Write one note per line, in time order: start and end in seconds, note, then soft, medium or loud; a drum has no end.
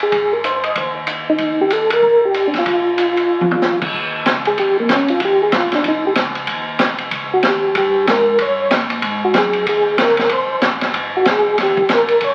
0.03 0.34 G#4 medium
0.12 0.72 G#1 medium
0.12 kick soft
0.12 ride medium
0.33 0.38 A#4 medium
0.44 0.64 C5 medium
0.44 hi-hat pedal soft
0.44 ride medium
0.64 0.76 D#5 medium
0.64 ride soft
0.75 1.36 D#2 medium
0.75 0.95 C5 medium
0.75 kick soft
0.75 ride medium
1.07 hi-hat pedal soft
1.07 ride medium
1.29 1.61 D#4 medium
1.38 1.99 D#2 medium
1.38 kick soft
1.38 ride soft
1.61 1.72 G4 medium
1.70 1.90 A4 medium
1.70 hi-hat pedal soft
1.70 ride medium
1.90 2.21 A#4 loud
1.90 ride medium
2.02 2.63 A#1 medium
2.02 kick soft
2.25 2.47 G4 medium
2.34 hi-hat pedal soft
2.34 ride medium
2.47 2.55 D4 medium
2.54 snare soft
2.54 ride soft
2.59 3.79 F4 medium
2.66 3.27 A#1 medium
2.66 kick soft
2.66 ride medium
2.98 hi-hat pedal soft
2.98 ride medium
3.17 ride soft
3.29 3.90 F1 medium
3.41 high tom soft
3.51 floor tom medium
3.61 snare soft
3.61 hi-hat pedal soft
3.82 kick medium
3.82 crash medium
3.94 4.24 D#2 medium
3.94 kick soft
4.26 4.56 C#2 medium
4.26 kick soft
4.26 snare medium
4.26 hi-hat pedal soft
4.26 ride medium
4.45 4.58 G#4 medium
4.45 ride soft
4.57 4.88 F2 medium
4.57 4.77 G4 medium
4.57 kick soft
4.57 ride medium
4.80 4.90 A#3 medium
4.89 4.99 C#2 medium
4.89 5.10 C#4 medium
4.89 kick soft
4.89 snare medium
4.89 hi-hat pedal medium
4.89 ride medium
4.98 5.09 A#1 medium
5.08 5.19 G1 medium
5.08 5.21 F4 medium
5.08 ride soft
5.20 5.51 D#2 medium
5.20 kick soft
5.20 ride medium
5.25 5.42 G4 medium
5.43 5.53 G#4 medium
5.52 5.83 A#1 medium
5.52 kick soft
5.52 snare medium
5.52 hi-hat pedal medium
5.52 ride medium
5.57 5.74 F4 medium
5.72 5.85 D4 medium
5.72 snare soft
5.72 ride soft
5.84 6.15 C2 medium
5.84 kick soft
5.84 ride medium
5.88 6.05 D#4 medium
6.07 6.13 G4 medium
6.15 6.47 C#2 medium
6.15 kick soft
6.15 snare medium
6.15 hi-hat pedal soft
6.15 ride medium
6.35 ride soft
6.47 6.79 D#2 medium
6.47 kick soft
6.47 ride medium
6.79 7.10 C2 medium
6.79 kick soft
6.79 snare medium
6.79 hi-hat pedal medium
6.79 ride medium
6.98 ride soft
7.11 7.42 C#2 medium
7.11 kick soft
7.11 ride medium
7.33 7.44 F#4 medium
7.43 7.74 D#2 medium
7.43 kick soft
7.43 snare medium
7.43 hi-hat pedal soft
7.43 ride medium
7.48 7.76 G4 medium
7.75 8.06 G2 medium
7.75 8.06 G4 medium
7.75 kick soft
7.75 ride medium
8.07 8.38 G#2 medium
8.07 8.38 A#4 medium
8.07 kick soft
8.07 snare medium
8.07 hi-hat pedal medium
8.07 ride medium
8.38 8.70 G2 medium
8.38 8.70 C#5 medium
8.38 kick soft
8.38 ride medium
8.71 9.02 A#2 medium
8.71 kick soft
8.71 snare medium
8.71 hi-hat pedal medium
8.71 ride medium
8.90 ride soft
9.02 9.33 G#2 medium
9.02 kick soft
9.02 ride medium
9.25 9.35 F#4 medium
9.34 9.65 F#2 medium
9.34 kick soft
9.34 snare medium
9.34 hi-hat pedal medium
9.34 ride medium
9.38 9.66 G#4 medium
9.53 ride soft
9.66 9.97 D#2 medium
9.66 9.97 G#4 medium
9.66 kick soft
9.66 ride medium
9.97 10.29 C#2 medium
9.97 kick soft
9.97 snare medium
9.97 hi-hat pedal soft
9.97 ride medium
10.02 10.30 A#4 medium
10.09 snare soft
10.17 snare soft
10.17 ride soft
10.29 10.47 C2 medium
10.29 10.61 C5 medium
10.29 kick soft
10.29 ride medium
10.48 10.55 C2 soft
10.61 10.92 A#1 medium
10.61 kick soft
10.61 snare medium
10.61 hi-hat pedal medium
10.61 ride medium
10.81 snare soft
10.81 ride soft
10.94 11.25 G#1 medium
10.94 kick soft
10.94 ride medium
11.16 11.27 F#4 medium
11.25 11.57 C2 medium
11.25 kick soft
11.25 snare medium
11.25 hi-hat pedal medium
11.25 ride medium
11.31 11.58 G#4 loud
11.58 11.88 D#2 medium
11.58 kick soft
11.58 snare soft
11.58 ride medium
11.63 11.90 G4 medium
11.77 kick medium
11.89 12.20 A#1 medium
11.89 kick soft
11.89 snare medium
11.89 hi-hat pedal medium
11.89 ride medium
11.94 12.21 A#4 medium
12.08 ride soft
12.21 12.35 C2 medium
12.21 12.35 C#5 medium
12.21 kick soft
12.21 ride medium